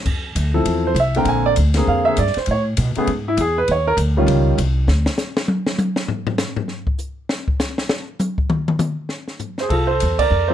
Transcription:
0.06 upright bass F2, kick, crash
0.35 upright bass D2, hi-hat pedal, ride
0.54 grand piano F3 C4 E4 A4
0.65 upright bass E2, ride
0.87 grand piano C5
0.95 upright bass C2, hi-hat pedal, ride
1.00 grand piano E5
1.15 grand piano D3 A#3 C4 A#4 G5, ride
1.25 upright bass A#1, grand piano G#5, ride
1.46 grand piano D5
1.56 upright bass D2, hi-hat pedal, ride
1.74 grand piano D3 A#3 C4 G#4, snare, ride
1.87 upright bass F2, grand piano F5
2.05 grand piano D3 A#3 C4 G#4 E5
2.17 upright bass G2, grand piano D5, hi-hat pedal, ride
2.27 snare
2.34 grand piano C5, muted upright bass stroke, snare, ride
2.46 upright bass A2, ride
2.51 grand piano C#5
2.77 upright bass B2, hi-hat pedal, ride
2.95 grand piano C#3 A3 B3 G#4, muted upright bass stroke, ride
3.07 upright bass G#2, ride
3.28 grand piano E4
3.37 upright bass E2, grand piano G#4, hi-hat pedal, ride
3.58 grand piano B4
3.68 upright bass D#2, grand piano C#5, ride
3.87 grand piano A#4
3.97 upright bass D2, hi-hat pedal, ride
4.17 grand piano D#3 G3 C#4 F4
4.26 upright bass C#2, ride
4.58 upright bass C2, hi-hat pedal, ride
4.87 upright bass D2, snare
5.06 snare
5.18 snare, hi-hat pedal
5.37 snare
5.48 high tom
5.67 snare
5.78 hi-hat pedal, high tom
5.96 snare
6.08 floor tom
6.27 floor tom
6.38 snare, hi-hat pedal
6.56 floor tom
6.68 snare
6.87 kick
6.98 hi-hat pedal
7.29 snare
7.48 kick
7.59 snare, hi-hat pedal
7.78 snare
7.89 snare
8.19 hi-hat pedal, high tom
8.38 kick
8.50 mid tom
8.68 mid tom
8.79 hi-hat pedal, mid tom
9.09 snare
9.28 snare
9.39 floor tom, hi-hat pedal
9.58 grand piano C5, snare
9.62 grand piano G#4
9.69 upright bass C2, grand piano F4 A4, kick, crash
9.87 grand piano A4 C5
10.00 upright bass E2, hi-hat pedal, ride
10.19 grand piano A#4 D5, kick, crash
10.31 upright bass F2
10.48 grand piano F3 C4 E4 A4 C5

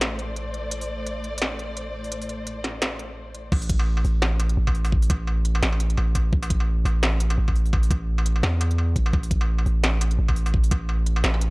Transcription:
Already playing: 808-style bass A1, string section A2 A3 C5 D5
0.01 snare, closed hi-hat
0.19 closed hi-hat
0.36 closed hi-hat
0.54 closed hi-hat
0.71 closed hi-hat
0.81 open hi-hat
1.06 closed hi-hat
1.24 closed hi-hat
1.38 snare, closed hi-hat
1.59 closed hi-hat
1.77 closed hi-hat
2.04 open hi-hat
2.12 closed hi-hat
2.22 open hi-hat
2.29 closed hi-hat
2.47 closed hi-hat
2.64 snare, closed hi-hat
2.82 snare, closed hi-hat
2.99 closed hi-hat
3.35 closed hi-hat
3.52 808-style bass A1, kick, crash, struck metal
3.62 open hi-hat
3.69 kick, closed hi-hat
3.79 struck metal
3.97 struck metal
4.05 808-style bass A1, open hi-hat
4.22 snare, struck metal
4.40 closed hi-hat, struck metal
4.49 closed hi-hat
4.57 808-style bass A1
4.67 kick, struck metal
4.75 open hi-hat
4.85 open hi-hat, struck metal
4.92 kick
5.02 open hi-hat
5.10 808-style bass A1, kick, closed hi-hat, struck metal
5.27 struck metal
5.45 closed hi-hat
5.55 struck metal
5.62 808-style bass A1, snare
5.72 struck metal
5.80 closed hi-hat
5.90 closed hi-hat
5.97 808-style bass A1, struck metal
6.15 kick, closed hi-hat, struck metal
6.33 808-style bass A1, kick
6.43 open hi-hat, struck metal
6.50 kick, closed hi-hat
6.60 struck metal
6.85 808-style bass A1, open hi-hat, struck metal
7.03 snare, struck metal
7.20 closed hi-hat
7.30 closed hi-hat, struck metal
7.38 808-style bass A1
7.48 kick, struck metal
7.56 open hi-hat
7.66 open hi-hat
7.73 kick, struck metal
7.83 open hi-hat
7.90 808-style bass A1, kick, closed hi-hat, struck metal
8.18 struck metal
8.26 closed hi-hat
8.36 struck metal
8.43 808-style bass E2, snare
8.61 closed hi-hat, struck metal
8.71 closed hi-hat
8.78 struck metal
8.96 808-style bass A1, kick, closed hi-hat
9.06 struck metal
9.13 808-style bass A1, kick, struck metal
9.23 open hi-hat
9.31 kick, closed hi-hat
9.41 struck metal
9.58 struck metal
9.66 808-style bass A1, open hi-hat
9.84 snare, struck metal
10.01 closed hi-hat, struck metal
10.11 closed hi-hat
10.19 808-style bass A1
10.28 kick, struck metal
10.36 open hi-hat
10.46 open hi-hat, struck metal
10.54 kick
10.64 open hi-hat
10.71 808-style bass A1, kick, closed hi-hat, struck metal
10.89 struck metal
11.06 closed hi-hat
11.16 struck metal
11.24 808-style bass A1, snare
11.34 struck metal
11.41 closed hi-hat

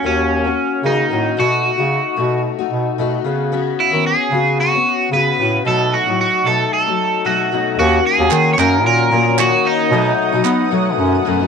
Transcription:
0.03 bass clarinet D#2, steel-string acoustic guitar D#3 A#3 C#4 F#4, clean electric guitar C#4
0.45 steel-string acoustic guitar A#3 C#4 F#4
0.83 bass clarinet C#3, steel-string acoustic guitar D#3 A#3 C#4 F#4, clean electric guitar D#4
1.10 bass clarinet A2, steel-string acoustic guitar D#3 A#3 C#4 F#4
1.37 steel-string acoustic guitar B2 A3 D#4 F#4, bass clarinet B2, clean electric guitar F#4
1.78 bass clarinet C#3, steel-string acoustic guitar A3 D#4 F#4
2.16 steel-string acoustic guitar B2 A3 D#4 F#4, bass clarinet B2
2.58 steel-string acoustic guitar A3 D#4 F#4
2.71 bass clarinet B2
2.97 bass clarinet B2, steel-string acoustic guitar B2 A3 D#4 F#4
3.24 bass clarinet C#3, steel-string acoustic guitar C#3 B3 C#4 F#4
3.52 steel-string acoustic guitar C#3 B3 C#4 F#4
3.80 clean electric guitar E4
3.92 bass clarinet D#3, steel-string acoustic guitar B3 C#4
4.07 clean electric guitar G#4
4.31 bass clarinet C#3, steel-string acoustic guitar C#3 B3 C#4 F#4
4.60 clean electric guitar F#4
4.73 steel-string acoustic guitar B3 C#4 F#4
5.11 bass clarinet C#3, steel-string acoustic guitar C#3 B3 C#4 F#4, clean electric guitar B4
5.38 bass clarinet A2, steel-string acoustic guitar C#3 B3 C#4 F#4
5.64 bass clarinet B2, steel-string acoustic guitar B2 F#3 A3 D#4, clean electric guitar A4
5.94 clean electric guitar F#4
6.06 bass clarinet A2, steel-string acoustic guitar F#3 A3 D#4
6.21 clean electric guitar F#4
6.44 bass clarinet B2, steel-string acoustic guitar B2 F#3 A3 D#4, clean electric guitar A4
6.73 clean electric guitar A4
6.86 steel-string acoustic guitar F#3 A3 D#4
7.25 steel-string acoustic guitar B2 F#3 A3 D#4, clean electric guitar F#4
7.51 steel-string acoustic guitar B2 F#3 A3 D#4
7.78 bass clarinet D#2, steel-string acoustic guitar D#3 A#3 C#4 F#4, clean electric guitar F#4, ambient pad C#5 F#5 A#5 D#6
8.06 clean electric guitar G#4
8.19 bass clarinet D#2, steel-string acoustic guitar A#3 C#4 F#4
8.31 bass clarinet D#3, clap
8.53 clean electric guitar C#5
8.58 bass clarinet F#2, steel-string acoustic guitar D#3 A#3 C#4 F#4, clean electric guitar A#4, clap
8.85 bass clarinet A#2, clean electric guitar A#4
9.11 bass clarinet A#2, steel-string acoustic guitar D#3 A#3 C#4 F#4
9.26 steel-string acoustic guitar A#3 C#4 F#4
9.38 steel-string acoustic guitar D#3 A#3 C#4 F#4, clean electric guitar F#4, clap
9.66 clean electric guitar D#4
9.91 bass clarinet B2, steel-string acoustic guitar B2 F#3 A3 D#4, ambient pad B4 A5
10.33 bass clarinet B2, steel-string acoustic guitar F#3 A3 D#4
10.45 bass clarinet B3, clap
10.71 steel-string acoustic guitar B2 F#3 A3 D#4, bass clarinet F#3
10.98 bass clarinet F#2
11.25 bass clarinet F#2, steel-string acoustic guitar B2 F#3 A3 D#4
11.39 steel-string acoustic guitar F#3 A3 D#4

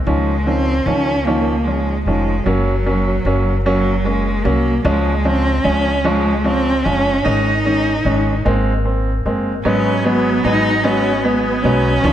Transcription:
0.07 upright bass C#2, grand piano D#3 F3 C#4, cello G#3
0.47 grand piano D#3 F3 C#4, cello C4
0.86 upright bass C#2, grand piano D#3 F3 C#4, cello C#4
1.25 grand piano D#3 F3 C#4, cello A#3
1.64 grand piano F3 C#4, cello G#3
2.05 upright bass F1, grand piano D#3 F3 C#4, cello G#3
2.44 upright bass F#1, cello F#3, grand piano F#3 A#3 C#4
2.86 grand piano F#3 A#3 C#4
3.25 upright bass F#1, grand piano F#3 A#3 C#4
3.65 cello F#3, grand piano F#3 A#3 C#4
4.04 cello G#3, grand piano A#3 C#4
4.44 upright bass C2, grand piano F#3 A#3 C#4, cello A#3
4.85 upright bass C#2, grand piano F3 G#3 C#4, cello G#3
5.25 grand piano F3 G#3 C#4, cello C4
5.64 upright bass C#2, grand piano F3 G#3 C#4, cello C#4
6.04 grand piano F3 G#3 C#4, cello G#3
6.44 grand piano F3 G#3 C#4, cello C4
6.84 upright bass F#1, grand piano F3 G#3 C#4, cello C#4
7.25 upright bass G#1, grand piano D#3 G#3 C#4, cello D#4
7.65 grand piano D#3 G#3 C#4
8.05 upright bass G#1, grand piano D#3 G#3 C#4
8.45 upright bass G#1, grand piano G#3 A#3 C4
8.85 grand piano A#3 C4
9.26 upright bass F#1, grand piano G#3 A#3 C4
9.65 upright bass G#1, grand piano F#3 G#3 B3, clean electric guitar F#3, cello C#4, tonewheel organ F#4 B4 D#5 G#5
10.05 grand piano F#3 G#3 B3, clean electric guitar F#3, cello B3
10.44 upright bass G#1, grand piano F#3 G#3 B3, cello D#4, clean electric guitar D#4
10.84 grand piano F#3 G#3 B3, clean electric guitar F#3, cello C#4
11.24 grand piano G#3 B3, cello B3, clean electric guitar B3
11.63 upright bass B1, grand piano F#3 G#3 B3, clean electric guitar F#3, cello C#4
12.04 upright bass C#2, grand piano D#3 F3 C#4, clean electric guitar F3, tonewheel organ F4 F5 G#5

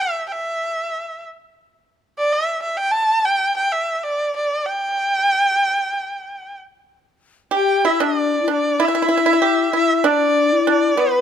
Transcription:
0.01 erhu E5
0.28 erhu E5 G5
2.18 erhu D5
2.32 erhu E5
2.62 erhu E5
2.77 erhu G5
2.91 erhu A5
3.25 erhu G5
3.57 erhu G5
3.72 erhu E5
3.95 erhu E5
4.04 erhu D5
4.36 erhu D5
4.66 erhu G5
7.51 pipa G4, xiao G4, erhu G5
7.85 pipa E4, xiao E4, erhu E5
8.00 pipa D4, xiao D4, erhu D5
8.42 xiao E4
8.48 pipa D4, xiao D4
8.53 erhu D5
8.80 pipa E4, xiao E4
8.85 pipa E4, erhu E5
8.95 pipa E4
9.02 pipa E4
9.09 pipa E4
9.17 pipa E4
9.26 pipa E4
9.33 pipa E4
9.42 pipa G4
9.73 xiao E4, pipa E4, erhu E5
9.96 erhu E5
10.04 pipa D4, xiao D4, erhu D5
10.53 xiao E4
10.67 pipa D4, erhu D5
10.97 pipa B3, xiao B4, erhu B4

